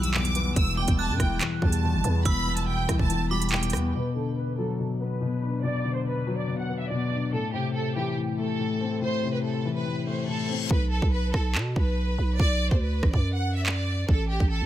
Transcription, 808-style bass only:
0.00 0.53 B1 loud
0.56 0.87 E1 loud
0.88 1.11 E1 loud
1.09 1.19 G2 loud
1.20 1.40 E1 loud
1.62 1.95 E2 loud
1.94 2.04 G1 loud
2.04 2.25 E2 loud
2.25 2.86 E1 loud
2.89 2.99 B1 loud
2.99 3.75 E1 loud
3.73 3.93 E2 loud
10.71 11.01 B1 loud
11.02 11.33 B1 medium
11.34 11.57 B1 loud
11.55 11.75 B2 loud
11.76 12.17 B1 loud
12.18 12.39 B1 loud
12.40 12.70 B1 loud
12.71 13.02 D2 medium
13.03 13.13 A1 loud
13.14 14.05 F#2 loud
14.09 14.39 A1 loud
14.40 14.63 A1 loud
14.61 14.66 C3 loud

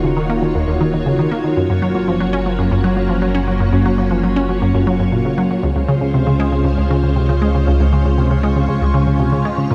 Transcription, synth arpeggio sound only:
0.04 0.16 C#3 medium
0.17 0.29 D#3 loud
0.30 0.35 A#3 loud
0.42 0.51 D#3 medium
0.55 0.64 D#2 loud
0.68 0.76 D#2 loud
0.81 0.92 D#3 loud
0.93 1.05 D#3 medium
1.06 1.18 C#3 medium
1.19 1.31 D#3 loud
1.31 1.36 A#3 loud
1.44 1.53 D#3 medium
1.57 1.65 F#2 loud
1.69 1.78 F#2 loud
1.82 1.94 F#3 loud
1.95 2.07 F#3 medium
2.08 2.20 F3 medium
2.20 2.32 F#3 loud
2.33 2.38 C#4 loud
2.46 2.54 F#3 medium
2.59 2.67 F#2 loud
2.71 2.80 F#2 loud
2.84 2.95 F#3 loud
2.96 3.09 F#3 medium
3.09 3.21 F3 medium
3.22 3.34 F#3 loud
3.35 3.40 C#4 loud
3.48 3.56 F#3 medium
3.60 3.69 F#2 loud
3.73 3.81 F#2 loud
3.86 3.97 F#3 loud
3.98 4.10 F#3 medium
4.11 4.23 F3 medium
4.24 4.36 F#3 loud
4.36 4.42 C#4 loud
4.49 4.58 F#3 medium
4.62 4.70 F#2 loud
4.74 4.83 F#2 loud
4.87 4.99 F#3 loud
5.00 5.08 F#2 loud
5.12 5.21 A#2 medium
5.25 5.37 C#3 medium
5.38 5.49 F#3 loud
5.51 5.59 F#3 medium
5.63 5.72 C#2 loud
5.76 5.85 C#2 loud
5.88 6.00 C#3 loud
6.01 6.14 C#3 medium
6.14 6.26 C3 medium
6.27 6.39 C#3 loud
6.40 6.45 G#3 loud
6.52 6.61 C#3 medium
6.65 6.74 C#2 loud
6.78 6.86 C#2 loud
6.91 7.02 C#3 loud
7.03 7.15 C#3 medium
7.16 7.28 C3 medium
7.29 7.41 C#3 loud
7.42 7.47 G#3 loud
7.55 7.63 C#3 medium
7.67 7.76 C#2 loud
7.80 7.88 C#2 loud
7.93 8.04 C#3 loud
8.05 8.17 C#3 medium
8.18 8.30 C3 medium
8.31 8.43 C#3 loud
8.43 8.48 G#3 loud
8.56 8.64 C#3 medium
8.69 8.77 C#2 loud
8.81 8.90 C#2 loud
8.94 9.06 C#3 loud
9.07 9.19 C#3 medium
9.19 9.32 C3 medium
9.32 9.44 C#3 loud
9.45 9.50 G#3 loud
9.58 9.66 C#3 medium
9.71 9.75 A#2 loud

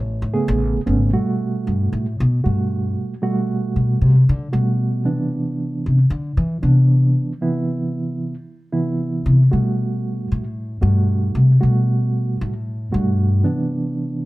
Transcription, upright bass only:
0.00 0.21 A1 medium
0.22 0.34 A2 medium
0.48 0.73 A1 loud
0.77 muted upright bass stroke soft
0.87 1.12 G#1 medium
1.67 1.92 G2 medium
1.93 2.18 A2 medium
2.20 2.45 B2 medium
2.45 2.94 G2 medium
3.76 4.01 B2 medium
4.01 4.27 C3 medium
4.29 4.52 D3 medium
4.53 5.02 B2 medium
5.86 6.10 C3 medium
6.10 6.36 D3 medium
6.37 6.62 E3 medium
6.63 7.12 C3 medium
9.26 9.51 C3 medium
9.53 10.27 B2 medium
10.32 10.80 A2 medium
10.82 11.31 G2 medium
11.35 11.60 C3 medium
11.63 12.37 B2 medium
12.41 12.89 A2 medium
12.94 13.42 G2 medium

